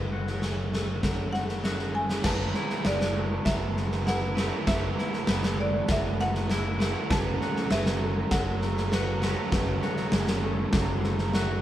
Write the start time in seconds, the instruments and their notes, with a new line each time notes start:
Already playing: fingered electric bass F#1, clean electric guitar F#2 F#3 A3 F#4, ambient pad F#3 A3 C#4 A4 C#5, felt piano B4, marimba F#5
0.12 clean electric guitar F#4
0.27 snare
0.42 clean electric guitar C#4, snare
0.73 clean electric guitar A3, felt piano A4, snare
1.03 clean electric guitar F#3, felt piano A4, kick, snare
1.33 clean electric guitar A3, marimba F#5, snare
1.49 snare
1.64 clean electric guitar F#4, felt piano E5, snare
1.79 snare
1.94 clean electric guitar A3, marimba G#5
2.09 snare
2.23 fingered electric bass F#1, ambient pad E3 A3 B3 A4 B4, overdriven electric guitar F#3 A3 E4 F#4 B4, clean electric guitar F#3, felt piano B4, marimba A5, kick, snare, crash
2.54 clean electric guitar E4, felt piano C#5, snare
2.70 snare
2.85 fingered electric bass F#1, clean electric guitar B3, felt piano B4, marimba D5, snare
3.01 snare
3.15 clean electric guitar A3, felt piano A4
3.45 fingered electric bass F#1, clean electric guitar F#3, marimba E5, kick, snare
3.76 clean electric guitar A3, snare
3.92 snare
4.06 clean electric guitar E4, felt piano B4, marimba F#5, snare
4.35 overdriven electric guitar F#3 A3 E4 F#4 B4, clean electric guitar A3, snare
4.66 fingered electric bass F#1, overdriven electric guitar F#3 A3 E4 F#4 B4, clean electric guitar F#3, felt piano B4, marimba E5, kick, snare
4.98 clean electric guitar E4, snare
5.13 snare
5.27 fingered electric bass F#1, clean electric guitar B3, snare
5.43 snare
5.59 clean electric guitar A3, felt piano A4, marimba D5
5.89 fingered electric bass F#1, clean electric guitar F#3, felt piano A4, marimba E5, kick, snare
6.19 clean electric guitar A3, marimba F#5, snare
6.35 snare
6.50 clean electric guitar E4, felt piano E5, snare
6.79 overdriven electric guitar F#3 A3 E4 F#4 B4, clean electric guitar A3, snare
7.09 fingered electric bass F#1, clean electric guitar F#2, ambient pad C#3 F#3 F#4, overdriven electric guitar F#3 A3 C#4 F#4, felt piano B4, marimba A5, kick, snare
7.41 clean electric guitar F#4, felt piano C#5, snare
7.56 snare
7.70 fingered electric bass F#1, clean electric guitar C#4, felt piano B4, marimba E5, snare
7.86 snare
8.01 clean electric guitar A3, felt piano A4
8.31 fingered electric bass F#1, clean electric guitar F#3, marimba F#5, kick, snare
8.62 clean electric guitar A3, snare
8.77 snare
8.92 clean electric guitar F#4, felt piano B4, snare
9.21 overdriven electric guitar F#3 A3 C#4 F#4, clean electric guitar A3, snare
9.51 fingered electric bass F#1, clean electric guitar F#2, overdriven electric guitar F#3 A3 C#4 F#4, felt piano B4, kick, snare
9.82 clean electric guitar F#4, snare
9.97 snare
10.12 fingered electric bass F#1, clean electric guitar C#4, snare
10.27 snare
10.43 clean electric guitar A3, felt piano A4
10.73 fingered electric bass F#1, clean electric guitar F#3, felt piano A4, kick, snare
11.04 clean electric guitar A3, snare
11.18 snare
11.33 clean electric guitar F#4, felt piano E5, snare